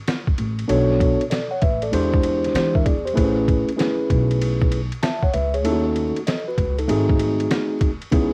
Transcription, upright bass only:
0, 0, Header, 1, 2, 480
1, 0, Start_track
1, 0, Tempo, 618557
1, 542, Time_signature, 4, 2, 24, 8
1, 6465, End_track
2, 0, Start_track
2, 0, Title_t, "Upright bass"
2, 0, Program_c, 0, 32
2, 296, Note_on_c, 0, 33, 85
2, 507, Note_off_c, 0, 33, 0
2, 539, Note_on_c, 0, 35, 112
2, 887, Note_off_c, 0, 35, 0
2, 1258, Note_on_c, 0, 33, 86
2, 1469, Note_off_c, 0, 33, 0
2, 1497, Note_on_c, 0, 40, 90
2, 1917, Note_off_c, 0, 40, 0
2, 1974, Note_on_c, 0, 52, 93
2, 2186, Note_off_c, 0, 52, 0
2, 2217, Note_on_c, 0, 40, 80
2, 2428, Note_off_c, 0, 40, 0
2, 2459, Note_on_c, 0, 33, 100
2, 2807, Note_off_c, 0, 33, 0
2, 3181, Note_on_c, 0, 35, 97
2, 3789, Note_off_c, 0, 35, 0
2, 4143, Note_on_c, 0, 37, 78
2, 4385, Note_off_c, 0, 37, 0
2, 4385, Note_on_c, 0, 39, 106
2, 4730, Note_off_c, 0, 39, 0
2, 5103, Note_on_c, 0, 37, 84
2, 5311, Note_off_c, 0, 37, 0
2, 5340, Note_on_c, 0, 32, 99
2, 5759, Note_off_c, 0, 32, 0
2, 6302, Note_on_c, 0, 37, 102
2, 6465, Note_off_c, 0, 37, 0
2, 6465, End_track
0, 0, End_of_file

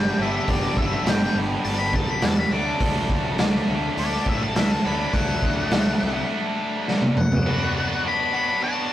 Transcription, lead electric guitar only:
0, 0, Header, 1, 2, 480
1, 0, Start_track
1, 0, Tempo, 581395
1, 400, Time_signature, 4, 2, 24, 8
1, 7372, End_track
2, 0, Start_track
2, 0, Title_t, "Lead electric guitar"
2, 0, Program_c, 0, 29
2, 0, Note_on_c, 0, 79, 97
2, 156, Note_off_c, 0, 79, 0
2, 180, Note_on_c, 0, 76, 81
2, 403, Note_off_c, 0, 76, 0
2, 413, Note_on_c, 0, 74, 84
2, 640, Note_off_c, 0, 74, 0
2, 645, Note_on_c, 0, 76, 90
2, 876, Note_off_c, 0, 76, 0
2, 899, Note_on_c, 0, 79, 95
2, 1123, Note_off_c, 0, 79, 0
2, 1359, Note_on_c, 0, 81, 97
2, 1472, Note_on_c, 0, 83, 81
2, 1477, Note_off_c, 0, 81, 0
2, 1593, Note_off_c, 0, 83, 0
2, 1613, Note_on_c, 0, 81, 90
2, 1724, Note_off_c, 0, 81, 0
2, 1736, Note_on_c, 0, 83, 79
2, 1845, Note_off_c, 0, 83, 0
2, 1845, Note_on_c, 0, 81, 89
2, 1960, Note_off_c, 0, 81, 0
2, 1971, Note_on_c, 0, 83, 90
2, 2081, Note_off_c, 0, 83, 0
2, 2084, Note_on_c, 0, 86, 97
2, 2316, Note_off_c, 0, 86, 0
2, 3295, Note_on_c, 0, 74, 100
2, 3522, Note_off_c, 0, 74, 0
2, 3543, Note_on_c, 0, 76, 86
2, 3649, Note_off_c, 0, 76, 0
2, 3656, Note_on_c, 0, 81, 89
2, 3765, Note_off_c, 0, 81, 0
2, 3769, Note_on_c, 0, 76, 82
2, 3882, Note_off_c, 0, 76, 0
2, 3890, Note_on_c, 0, 81, 88
2, 4009, Note_off_c, 0, 81, 0
2, 4009, Note_on_c, 0, 83, 83
2, 4239, Note_off_c, 0, 83, 0
2, 4246, Note_on_c, 0, 78, 97
2, 5176, Note_off_c, 0, 78, 0
2, 5925, Note_on_c, 0, 78, 100
2, 6664, Note_off_c, 0, 78, 0
2, 6669, Note_on_c, 0, 83, 102
2, 6883, Note_off_c, 0, 83, 0
2, 6893, Note_on_c, 0, 83, 109
2, 7110, Note_off_c, 0, 83, 0
2, 7128, Note_on_c, 0, 81, 114
2, 7372, Note_off_c, 0, 81, 0
2, 7372, End_track
0, 0, End_of_file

